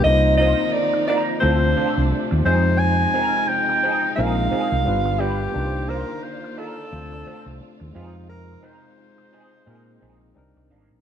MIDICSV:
0, 0, Header, 1, 8, 480
1, 0, Start_track
1, 0, Key_signature, -3, "minor"
1, 0, Tempo, 687285
1, 41, Time_signature, 4, 2, 24, 8
1, 7690, End_track
2, 0, Start_track
2, 0, Title_t, "Alto saxophone"
2, 0, Program_c, 0, 65
2, 27, Note_on_c, 0, 75, 109
2, 257, Note_off_c, 0, 75, 0
2, 262, Note_on_c, 0, 75, 103
2, 506, Note_on_c, 0, 74, 96
2, 516, Note_off_c, 0, 75, 0
2, 748, Note_off_c, 0, 74, 0
2, 753, Note_on_c, 0, 74, 94
2, 862, Note_off_c, 0, 74, 0
2, 981, Note_on_c, 0, 72, 103
2, 1503, Note_off_c, 0, 72, 0
2, 1716, Note_on_c, 0, 72, 116
2, 1947, Note_on_c, 0, 80, 127
2, 1957, Note_off_c, 0, 72, 0
2, 2430, Note_on_c, 0, 79, 120
2, 2440, Note_off_c, 0, 80, 0
2, 2901, Note_off_c, 0, 79, 0
2, 2905, Note_on_c, 0, 77, 111
2, 3633, Note_on_c, 0, 67, 112
2, 3644, Note_off_c, 0, 77, 0
2, 4115, Note_on_c, 0, 70, 99
2, 4126, Note_off_c, 0, 67, 0
2, 4351, Note_on_c, 0, 72, 95
2, 4361, Note_off_c, 0, 70, 0
2, 4596, Note_on_c, 0, 69, 116
2, 4607, Note_off_c, 0, 72, 0
2, 5379, Note_off_c, 0, 69, 0
2, 5555, Note_on_c, 0, 65, 98
2, 5781, Note_off_c, 0, 65, 0
2, 5793, Note_on_c, 0, 70, 99
2, 6035, Note_on_c, 0, 72, 98
2, 6045, Note_off_c, 0, 70, 0
2, 7238, Note_off_c, 0, 72, 0
2, 7690, End_track
3, 0, Start_track
3, 0, Title_t, "Clean electric guitar"
3, 0, Program_c, 1, 27
3, 277, Note_on_c, 1, 63, 71
3, 282, Note_on_c, 1, 65, 78
3, 289, Note_on_c, 1, 72, 88
3, 420, Note_off_c, 1, 63, 0
3, 422, Note_off_c, 1, 65, 0
3, 426, Note_off_c, 1, 72, 0
3, 757, Note_on_c, 1, 63, 78
3, 762, Note_on_c, 1, 65, 96
3, 764, Note_on_c, 1, 70, 90
3, 883, Note_off_c, 1, 70, 0
3, 892, Note_off_c, 1, 65, 0
3, 900, Note_off_c, 1, 63, 0
3, 986, Note_on_c, 1, 60, 74
3, 992, Note_on_c, 1, 65, 83
3, 997, Note_on_c, 1, 69, 82
3, 1118, Note_off_c, 1, 69, 0
3, 1125, Note_off_c, 1, 65, 0
3, 1134, Note_off_c, 1, 60, 0
3, 1235, Note_on_c, 1, 60, 67
3, 1238, Note_on_c, 1, 65, 71
3, 1243, Note_on_c, 1, 69, 65
3, 1349, Note_off_c, 1, 60, 0
3, 1350, Note_off_c, 1, 65, 0
3, 1353, Note_off_c, 1, 69, 0
3, 1714, Note_on_c, 1, 60, 72
3, 1720, Note_on_c, 1, 63, 79
3, 1726, Note_on_c, 1, 68, 86
3, 1846, Note_off_c, 1, 68, 0
3, 1856, Note_off_c, 1, 63, 0
3, 1859, Note_off_c, 1, 60, 0
3, 2193, Note_on_c, 1, 60, 73
3, 2199, Note_on_c, 1, 63, 68
3, 2203, Note_on_c, 1, 70, 74
3, 2338, Note_off_c, 1, 60, 0
3, 2341, Note_off_c, 1, 63, 0
3, 2343, Note_off_c, 1, 70, 0
3, 2678, Note_on_c, 1, 60, 77
3, 2684, Note_on_c, 1, 63, 78
3, 2690, Note_on_c, 1, 68, 90
3, 2807, Note_off_c, 1, 68, 0
3, 2814, Note_off_c, 1, 63, 0
3, 2820, Note_off_c, 1, 60, 0
3, 2917, Note_on_c, 1, 60, 68
3, 2926, Note_on_c, 1, 63, 85
3, 2927, Note_on_c, 1, 68, 84
3, 3050, Note_off_c, 1, 68, 0
3, 3056, Note_off_c, 1, 63, 0
3, 3060, Note_off_c, 1, 60, 0
3, 3149, Note_on_c, 1, 60, 64
3, 3157, Note_on_c, 1, 63, 72
3, 3161, Note_on_c, 1, 68, 78
3, 3266, Note_off_c, 1, 60, 0
3, 3270, Note_off_c, 1, 63, 0
3, 3272, Note_off_c, 1, 68, 0
3, 3632, Note_on_c, 1, 62, 85
3, 3635, Note_on_c, 1, 65, 90
3, 3642, Note_on_c, 1, 71, 83
3, 3770, Note_off_c, 1, 71, 0
3, 3773, Note_off_c, 1, 65, 0
3, 3777, Note_off_c, 1, 62, 0
3, 4110, Note_on_c, 1, 63, 65
3, 4118, Note_on_c, 1, 65, 75
3, 4121, Note_on_c, 1, 72, 88
3, 4256, Note_off_c, 1, 63, 0
3, 4260, Note_off_c, 1, 65, 0
3, 4262, Note_off_c, 1, 72, 0
3, 4592, Note_on_c, 1, 63, 76
3, 4597, Note_on_c, 1, 65, 75
3, 4602, Note_on_c, 1, 70, 79
3, 4735, Note_off_c, 1, 70, 0
3, 4737, Note_off_c, 1, 63, 0
3, 4740, Note_off_c, 1, 65, 0
3, 5076, Note_on_c, 1, 60, 71
3, 5080, Note_on_c, 1, 65, 78
3, 5083, Note_on_c, 1, 69, 80
3, 5203, Note_off_c, 1, 69, 0
3, 5210, Note_off_c, 1, 65, 0
3, 5219, Note_off_c, 1, 60, 0
3, 5552, Note_on_c, 1, 60, 74
3, 5558, Note_on_c, 1, 63, 79
3, 5561, Note_on_c, 1, 68, 78
3, 5684, Note_off_c, 1, 68, 0
3, 5693, Note_off_c, 1, 63, 0
3, 5697, Note_off_c, 1, 60, 0
3, 6024, Note_on_c, 1, 60, 69
3, 6029, Note_on_c, 1, 63, 68
3, 6036, Note_on_c, 1, 70, 83
3, 6173, Note_off_c, 1, 60, 0
3, 6176, Note_off_c, 1, 63, 0
3, 6179, Note_off_c, 1, 70, 0
3, 6514, Note_on_c, 1, 60, 73
3, 6519, Note_on_c, 1, 63, 81
3, 6524, Note_on_c, 1, 68, 88
3, 6647, Note_off_c, 1, 68, 0
3, 6652, Note_off_c, 1, 63, 0
3, 6658, Note_off_c, 1, 60, 0
3, 6748, Note_on_c, 1, 60, 63
3, 6754, Note_on_c, 1, 63, 71
3, 6757, Note_on_c, 1, 68, 84
3, 6885, Note_off_c, 1, 68, 0
3, 6891, Note_off_c, 1, 63, 0
3, 6895, Note_off_c, 1, 60, 0
3, 6991, Note_on_c, 1, 60, 65
3, 6999, Note_on_c, 1, 63, 61
3, 7005, Note_on_c, 1, 68, 60
3, 7107, Note_off_c, 1, 60, 0
3, 7111, Note_off_c, 1, 63, 0
3, 7114, Note_off_c, 1, 68, 0
3, 7476, Note_on_c, 1, 51, 80
3, 7482, Note_on_c, 1, 58, 86
3, 7485, Note_on_c, 1, 62, 81
3, 7607, Note_off_c, 1, 62, 0
3, 7615, Note_off_c, 1, 58, 0
3, 7619, Note_off_c, 1, 51, 0
3, 7690, End_track
4, 0, Start_track
4, 0, Title_t, "Tine electric piano"
4, 0, Program_c, 2, 4
4, 0, Control_c, 2, 64, 127
4, 10, Note_on_c, 2, 58, 67
4, 26, Note_on_c, 2, 60, 58
4, 39, Note_on_c, 2, 63, 60
4, 49, Control_c, 2, 64, 0
4, 53, Note_on_c, 2, 65, 57
4, 65, Note_on_c, 2, 72, 70
4, 184, Control_c, 2, 64, 127
4, 966, Note_off_c, 2, 58, 0
4, 974, Note_off_c, 2, 60, 0
4, 980, Note_off_c, 2, 63, 0
4, 987, Note_off_c, 2, 65, 0
4, 988, Note_on_c, 2, 57, 66
4, 994, Note_off_c, 2, 72, 0
4, 994, Note_on_c, 2, 60, 59
4, 1002, Note_on_c, 2, 62, 58
4, 1009, Note_on_c, 2, 64, 48
4, 1010, Control_c, 2, 64, 0
4, 1017, Note_on_c, 2, 72, 72
4, 1055, Note_on_c, 2, 65, 63
4, 1057, Note_off_c, 2, 64, 0
4, 1122, Control_c, 2, 64, 127
4, 1694, Note_on_c, 2, 55, 49
4, 1699, Note_off_c, 2, 60, 0
4, 1707, Note_on_c, 2, 60, 56
4, 1714, Note_off_c, 2, 57, 0
4, 1721, Note_off_c, 2, 62, 0
4, 1723, Note_on_c, 2, 63, 54
4, 1728, Note_off_c, 2, 72, 0
4, 1729, Note_off_c, 2, 65, 0
4, 1730, Control_c, 2, 64, 0
4, 1737, Note_on_c, 2, 65, 54
4, 1740, Note_on_c, 2, 56, 56
4, 1750, Note_on_c, 2, 72, 67
4, 1760, Note_off_c, 2, 55, 0
4, 1861, Control_c, 2, 64, 127
4, 2890, Note_off_c, 2, 60, 0
4, 2897, Note_off_c, 2, 63, 0
4, 2899, Note_off_c, 2, 56, 0
4, 2905, Note_off_c, 2, 65, 0
4, 2907, Note_on_c, 2, 56, 66
4, 2911, Note_off_c, 2, 72, 0
4, 2914, Note_on_c, 2, 60, 57
4, 2919, Note_on_c, 2, 63, 60
4, 2929, Note_on_c, 2, 65, 61
4, 2930, Control_c, 2, 64, 0
4, 2932, Note_on_c, 2, 70, 76
4, 3034, Control_c, 2, 64, 127
4, 3386, Note_on_c, 2, 55, 70
4, 3392, Note_on_c, 2, 59, 65
4, 3394, Note_off_c, 2, 56, 0
4, 3397, Note_off_c, 2, 60, 0
4, 3399, Note_on_c, 2, 62, 59
4, 3400, Note_off_c, 2, 63, 0
4, 3400, Note_off_c, 2, 65, 0
4, 3406, Note_off_c, 2, 70, 0
4, 3408, Control_c, 2, 64, 0
4, 3408, Note_on_c, 2, 65, 69
4, 3413, Note_on_c, 2, 71, 77
4, 3528, Control_c, 2, 64, 127
4, 3855, Note_on_c, 2, 58, 65
4, 3860, Note_off_c, 2, 62, 0
4, 3869, Note_on_c, 2, 62, 66
4, 3873, Note_off_c, 2, 55, 0
4, 3876, Note_off_c, 2, 59, 0
4, 3883, Note_on_c, 2, 63, 60
4, 3884, Note_off_c, 2, 65, 0
4, 3887, Note_off_c, 2, 71, 0
4, 3889, Control_c, 2, 64, 0
4, 3900, Note_on_c, 2, 65, 59
4, 3911, Note_on_c, 2, 71, 62
4, 3948, Note_off_c, 2, 71, 0
4, 3958, Note_on_c, 2, 72, 75
4, 4016, Control_c, 2, 64, 127
4, 4808, Note_off_c, 2, 58, 0
4, 4815, Note_off_c, 2, 62, 0
4, 4822, Note_off_c, 2, 63, 0
4, 4831, Note_off_c, 2, 65, 0
4, 4832, Note_on_c, 2, 57, 71
4, 4838, Note_on_c, 2, 60, 60
4, 4844, Note_on_c, 2, 62, 60
4, 4848, Control_c, 2, 64, 0
4, 4852, Note_off_c, 2, 72, 0
4, 4853, Note_on_c, 2, 65, 63
4, 4860, Note_on_c, 2, 72, 79
4, 4985, Control_c, 2, 64, 127
4, 5536, Note_on_c, 2, 56, 62
4, 5543, Note_off_c, 2, 60, 0
4, 5551, Note_on_c, 2, 60, 52
4, 5556, Note_off_c, 2, 57, 0
4, 5562, Note_off_c, 2, 62, 0
4, 5565, Note_on_c, 2, 63, 51
4, 5567, Note_off_c, 2, 65, 0
4, 5569, Control_c, 2, 64, 0
4, 5570, Note_off_c, 2, 72, 0
4, 5580, Note_on_c, 2, 65, 50
4, 5588, Note_on_c, 2, 71, 50
4, 5627, Note_off_c, 2, 71, 0
4, 5636, Note_on_c, 2, 72, 66
4, 5680, Control_c, 2, 64, 127
4, 6724, Note_off_c, 2, 56, 0
4, 6732, Note_off_c, 2, 60, 0
4, 6739, Note_off_c, 2, 63, 0
4, 6746, Note_off_c, 2, 65, 0
4, 6747, Note_on_c, 2, 56, 74
4, 6751, Note_on_c, 2, 60, 74
4, 6759, Note_on_c, 2, 63, 70
4, 6765, Note_on_c, 2, 65, 64
4, 6769, Control_c, 2, 64, 0
4, 6774, Note_on_c, 2, 70, 90
4, 6775, Note_off_c, 2, 72, 0
4, 6890, Control_c, 2, 64, 127
4, 7220, Note_off_c, 2, 60, 0
4, 7221, Note_on_c, 2, 55, 86
4, 7228, Note_on_c, 2, 60, 75
4, 7230, Note_off_c, 2, 63, 0
4, 7233, Note_on_c, 2, 62, 79
4, 7234, Note_off_c, 2, 56, 0
4, 7238, Note_on_c, 2, 63, 77
4, 7241, Note_off_c, 2, 70, 0
4, 7243, Note_off_c, 2, 65, 0
4, 7249, Note_on_c, 2, 70, 83
4, 7250, Control_c, 2, 64, 0
4, 7351, Control_c, 2, 64, 127
4, 7690, Note_off_c, 2, 55, 0
4, 7690, Note_off_c, 2, 60, 0
4, 7690, Note_off_c, 2, 62, 0
4, 7690, Note_off_c, 2, 63, 0
4, 7690, Note_off_c, 2, 70, 0
4, 7690, End_track
5, 0, Start_track
5, 0, Title_t, "String section"
5, 0, Program_c, 3, 48
5, 41, Note_on_c, 3, 51, 73
5, 42, Note_on_c, 3, 58, 65
5, 43, Note_on_c, 3, 53, 71
5, 44, Note_on_c, 3, 63, 88
5, 991, Note_off_c, 3, 51, 0
5, 992, Note_off_c, 3, 58, 0
5, 993, Note_off_c, 3, 63, 0
5, 1001, Note_on_c, 3, 57, 69
5, 1002, Note_on_c, 3, 48, 88
5, 1004, Note_on_c, 3, 62, 90
5, 1714, Note_off_c, 3, 57, 0
5, 1715, Note_off_c, 3, 62, 0
5, 1723, Note_on_c, 3, 63, 90
5, 1725, Note_on_c, 3, 56, 79
5, 2893, Note_off_c, 3, 53, 0
5, 2902, Note_off_c, 3, 48, 0
5, 2905, Note_off_c, 3, 56, 0
5, 2914, Note_on_c, 3, 56, 71
5, 2919, Note_on_c, 3, 48, 75
5, 2921, Note_on_c, 3, 58, 74
5, 3385, Note_off_c, 3, 63, 0
5, 3387, Note_on_c, 3, 55, 65
5, 3389, Note_on_c, 3, 65, 80
5, 3392, Note_off_c, 3, 56, 0
5, 3394, Note_on_c, 3, 50, 68
5, 3394, Note_on_c, 3, 59, 64
5, 3395, Note_off_c, 3, 48, 0
5, 3395, Note_off_c, 3, 58, 0
5, 3869, Note_off_c, 3, 55, 0
5, 3872, Note_off_c, 3, 50, 0
5, 3872, Note_off_c, 3, 59, 0
5, 3879, Note_on_c, 3, 51, 77
5, 3879, Note_on_c, 3, 74, 81
5, 3881, Note_on_c, 3, 58, 75
5, 4830, Note_off_c, 3, 51, 0
5, 4831, Note_off_c, 3, 58, 0
5, 4832, Note_on_c, 3, 48, 85
5, 4833, Note_on_c, 3, 57, 69
5, 5543, Note_off_c, 3, 74, 0
5, 5549, Note_off_c, 3, 57, 0
5, 5559, Note_on_c, 3, 56, 78
5, 5561, Note_on_c, 3, 63, 79
5, 6727, Note_off_c, 3, 65, 0
5, 6737, Note_off_c, 3, 48, 0
5, 6762, Note_on_c, 3, 48, 81
5, 6767, Note_on_c, 3, 58, 68
5, 7223, Note_off_c, 3, 56, 0
5, 7224, Note_off_c, 3, 63, 0
5, 7235, Note_off_c, 3, 58, 0
5, 7237, Note_on_c, 3, 74, 70
5, 7239, Note_on_c, 3, 51, 60
5, 7243, Note_on_c, 3, 58, 65
5, 7690, Note_off_c, 3, 48, 0
5, 7690, Note_off_c, 3, 51, 0
5, 7690, Note_off_c, 3, 58, 0
5, 7690, Note_off_c, 3, 74, 0
5, 7690, End_track
6, 0, Start_track
6, 0, Title_t, "Fingered electric bass"
6, 0, Program_c, 4, 33
6, 36, Note_on_c, 4, 36, 100
6, 365, Note_off_c, 4, 36, 0
6, 1001, Note_on_c, 4, 38, 102
6, 1208, Note_off_c, 4, 38, 0
6, 1380, Note_on_c, 4, 36, 92
6, 1467, Note_off_c, 4, 36, 0
6, 1621, Note_on_c, 4, 39, 97
6, 1707, Note_off_c, 4, 39, 0
6, 1716, Note_on_c, 4, 41, 89
6, 2132, Note_off_c, 4, 41, 0
6, 2923, Note_on_c, 4, 34, 104
6, 3128, Note_off_c, 4, 34, 0
6, 3298, Note_on_c, 4, 36, 89
6, 3385, Note_off_c, 4, 36, 0
6, 3397, Note_on_c, 4, 31, 105
6, 3812, Note_off_c, 4, 31, 0
6, 3880, Note_on_c, 4, 36, 94
6, 4207, Note_off_c, 4, 36, 0
6, 4838, Note_on_c, 4, 38, 114
6, 5046, Note_off_c, 4, 38, 0
6, 5211, Note_on_c, 4, 36, 91
6, 5302, Note_off_c, 4, 36, 0
6, 5456, Note_on_c, 4, 39, 93
6, 5544, Note_off_c, 4, 39, 0
6, 5556, Note_on_c, 4, 41, 99
6, 5971, Note_off_c, 4, 41, 0
6, 6754, Note_on_c, 4, 46, 92
6, 6964, Note_off_c, 4, 46, 0
6, 6998, Note_on_c, 4, 34, 97
6, 7206, Note_off_c, 4, 34, 0
6, 7239, Note_on_c, 4, 36, 95
6, 7359, Note_off_c, 4, 36, 0
6, 7376, Note_on_c, 4, 36, 88
6, 7465, Note_off_c, 4, 36, 0
6, 7479, Note_on_c, 4, 32, 87
6, 7599, Note_off_c, 4, 32, 0
6, 7620, Note_on_c, 4, 34, 78
6, 7690, Note_off_c, 4, 34, 0
6, 7690, End_track
7, 0, Start_track
7, 0, Title_t, "Muted clean electric guitar strokes"
7, 523, Note_on_c, 9, 29, 36
7, 593, Note_off_c, 9, 29, 0
7, 653, Note_on_c, 9, 29, 46
7, 723, Note_off_c, 9, 29, 0
7, 891, Note_on_c, 9, 29, 40
7, 961, Note_off_c, 9, 29, 0
7, 1127, Note_on_c, 9, 29, 42
7, 1196, Note_off_c, 9, 29, 0
7, 1377, Note_on_c, 9, 29, 40
7, 1447, Note_off_c, 9, 29, 0
7, 1481, Note_on_c, 9, 29, 37
7, 1551, Note_off_c, 9, 29, 0
7, 1614, Note_on_c, 9, 29, 42
7, 1684, Note_off_c, 9, 29, 0
7, 1855, Note_on_c, 9, 29, 36
7, 1925, Note_off_c, 9, 29, 0
7, 2439, Note_on_c, 9, 29, 34
7, 2509, Note_off_c, 9, 29, 0
7, 2579, Note_on_c, 9, 29, 38
7, 2649, Note_off_c, 9, 29, 0
7, 2816, Note_on_c, 9, 29, 48
7, 2885, Note_off_c, 9, 29, 0
7, 3059, Note_on_c, 9, 29, 48
7, 3128, Note_off_c, 9, 29, 0
7, 3297, Note_on_c, 9, 29, 46
7, 3366, Note_off_c, 9, 29, 0
7, 3394, Note_on_c, 9, 29, 37
7, 3464, Note_off_c, 9, 29, 0
7, 3531, Note_on_c, 9, 29, 43
7, 3601, Note_off_c, 9, 29, 0
7, 3778, Note_on_c, 9, 29, 43
7, 3848, Note_off_c, 9, 29, 0
7, 4357, Note_on_c, 9, 29, 32
7, 4427, Note_off_c, 9, 29, 0
7, 4499, Note_on_c, 9, 29, 42
7, 4569, Note_off_c, 9, 29, 0
7, 4743, Note_on_c, 9, 29, 40
7, 4813, Note_off_c, 9, 29, 0
7, 4975, Note_on_c, 9, 29, 46
7, 5044, Note_off_c, 9, 29, 0
7, 5211, Note_on_c, 9, 29, 39
7, 5281, Note_off_c, 9, 29, 0
7, 5311, Note_on_c, 9, 29, 45
7, 5381, Note_off_c, 9, 29, 0
7, 5448, Note_on_c, 9, 29, 39
7, 5518, Note_off_c, 9, 29, 0
7, 5692, Note_on_c, 9, 29, 46
7, 5762, Note_off_c, 9, 29, 0
7, 6270, Note_on_c, 9, 29, 42
7, 6339, Note_off_c, 9, 29, 0
7, 6412, Note_on_c, 9, 29, 46
7, 6482, Note_off_c, 9, 29, 0
7, 6655, Note_on_c, 9, 29, 46
7, 6725, Note_off_c, 9, 29, 0
7, 6893, Note_on_c, 9, 29, 44
7, 6963, Note_off_c, 9, 29, 0
7, 7133, Note_on_c, 9, 29, 40
7, 7203, Note_off_c, 9, 29, 0
7, 7239, Note_on_c, 9, 29, 31
7, 7309, Note_off_c, 9, 29, 0
7, 7383, Note_on_c, 9, 29, 48
7, 7453, Note_off_c, 9, 29, 0
7, 7616, Note_on_c, 9, 29, 36
7, 7685, Note_off_c, 9, 29, 0
7, 7690, End_track
8, 0, Start_track
8, 0, Title_t, "Muted fingered electric bass strokes"
8, 1478, Note_on_c, 9, 29, 53
8, 1548, Note_off_c, 9, 29, 0
8, 3159, Note_on_c, 9, 29, 51
8, 3229, Note_off_c, 9, 29, 0
8, 5078, Note_on_c, 9, 29, 46
8, 5148, Note_off_c, 9, 29, 0
8, 5313, Note_on_c, 9, 29, 51
8, 5383, Note_off_c, 9, 29, 0
8, 7690, End_track
0, 0, End_of_file